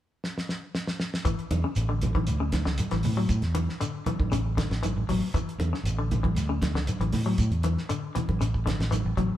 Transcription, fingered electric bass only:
1.26 1.38 A1 medium
1.39 muted fingered electric bass stroke soft
1.51 1.63 E2 medium
1.76 2.24 A1 loud
2.27 2.64 D2 medium
2.66 2.78 C#2 medium
2.92 3.03 A1 medium
3.04 3.28 A2 medium
3.29 3.41 A2 medium
3.42 3.66 E2 medium
4.19 4.67 A1 medium
4.70 4.94 A1 medium
4.96 5.07 A1 medium
5.08 5.20 A1 medium
5.34 5.45 A1 medium
5.46 muted fingered electric bass stroke soft
5.58 5.71 E2 medium
5.83 6.32 A1 loud
6.35 6.72 D2 medium
6.74 6.86 C#2 medium
6.99 7.11 A1 loud
7.12 7.36 A2 medium
7.38 7.50 A2 medium
7.51 7.75 E2 medium
8.29 8.76 A1 medium
8.79 9.03 A1 medium
9.05 9.16 A1 medium
9.17 9.30 A1 medium

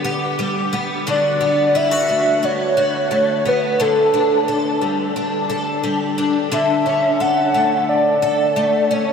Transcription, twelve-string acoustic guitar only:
0.00 1.06 D3 medium
0.00 0.38 G3 medium
0.00 0.72 B3 medium
0.05 1.06 G4 medium
0.39 1.13 G3 medium
0.73 1.40 B3 medium
1.07 3.79 D3 medium
1.07 1.75 F#4 medium
1.41 2.42 B3 medium
1.75 1.91 E4 medium
1.91 2.76 F#4 medium
2.09 3.10 A3 medium
2.43 3.44 B3 medium
2.77 3.79 F#4 medium
3.11 4.81 A3 medium
3.45 3.86 B3 medium
3.80 6.51 D3 medium
3.80 4.48 A4 medium
4.14 5.16 D4 medium
4.48 5.49 A4 medium
4.81 5.82 G3 medium
5.16 6.18 D4 medium
5.50 6.52 A4 medium
5.83 6.58 G3 medium
6.18 6.85 D4 medium
6.52 9.13 D3 medium
6.52 7.19 A4 medium
6.86 7.88 C#4 medium
7.20 8.21 A4 medium
7.54 8.55 A3 medium
8.22 9.13 A4 medium
8.56 9.13 A3 medium
8.91 9.13 C#4 medium

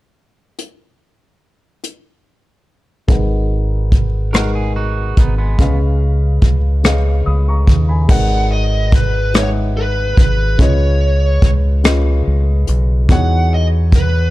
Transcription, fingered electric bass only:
3.09 5.13 G#1 medium
5.18 5.55 G#1 medium
5.60 6.39 C#2 medium
6.43 7.22 C#2 medium
7.27 7.64 C#2 medium
7.68 8.05 D#2 medium
8.10 10.14 G#1 medium
10.18 10.55 G#1 medium
10.59 11.39 C#2 medium
11.43 12.22 C#2 medium
12.27 12.64 C#2 medium
12.69 13.06 B1 medium
13.10 14.30 E2 medium

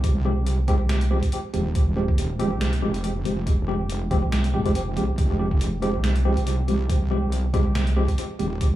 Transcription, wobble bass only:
0.00 0.78 C2 medium
0.80 1.21 C2 loud
1.54 2.53 D#1 medium
2.51 2.84 C2 loud
2.82 3.24 F1 loud
3.25 4.24 F1 medium
4.23 4.55 C2 loud
4.54 4.98 F1 loud
4.97 5.16 C2 loud
5.18 5.96 F1 loud
5.94 6.35 C2 loud
6.37 7.64 C2 medium
7.65 8.07 C2 loud
8.39 8.76 D#1 medium

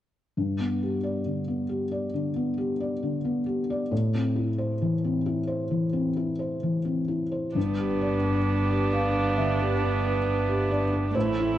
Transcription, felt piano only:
0.37 2.11 G2 soft
0.60 0.96 B3 soft
0.83 1.19 G4 soft
1.03 1.40 D5 soft
1.25 1.62 D3 soft
1.48 1.84 B3 soft
1.69 2.05 G4 soft
1.91 2.28 D5 soft
2.14 2.50 D3 soft
2.36 2.72 B3 soft
2.58 2.94 G4 soft
2.80 3.16 D5 soft
3.03 3.38 D3 soft
3.25 3.60 B3 soft
3.46 3.82 G4 soft
3.70 3.92 D5 soft
3.91 5.67 A2 soft
4.14 4.50 C4 soft
4.36 4.72 E4 soft
4.58 4.94 C5 soft
4.82 5.17 E3 soft
5.04 5.40 C4 soft
5.26 5.62 E4 soft
5.47 5.84 C5 soft
5.71 6.08 E3 soft
5.93 6.30 C4 soft
6.17 6.54 E4 soft
6.39 6.77 C5 soft
6.63 7.00 E3 soft
6.85 7.23 C4 soft
7.08 7.46 E4 soft
7.32 7.55 C5 soft
7.55 9.31 G2 soft
7.79 8.15 G4 soft
8.02 8.38 D4 soft
8.02 8.87 D5 soft
8.24 8.95 B4 soft
8.69 9.05 G4 soft
8.92 9.27 D4 soft
8.92 9.33 F5 soft
9.14 9.50 B4 soft
9.37 9.72 D3 soft
9.37 10.67 E5 soft
9.59 9.95 G4 soft
9.82 10.17 D4 soft
10.05 10.76 B4 soft
10.48 10.84 G4 soft
10.71 11.07 D4 soft
10.71 11.12 D5 medium
10.94 11.15 B4 soft
11.15 11.58 A2 soft
11.15 11.58 C5 medium
11.39 11.58 E4 soft

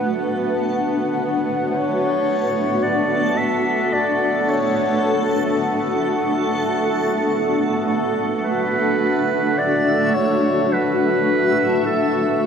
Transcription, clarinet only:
1.69 2.85 C#5 medium
2.83 3.39 D5 medium
3.37 3.95 E5 medium
3.93 4.51 D5 medium
4.50 5.60 C#5 medium
8.44 9.60 B4 loud
9.58 10.16 D5 loud
10.15 10.74 C#5 medium
10.73 11.85 B4 medium
11.86 12.46 A4 medium

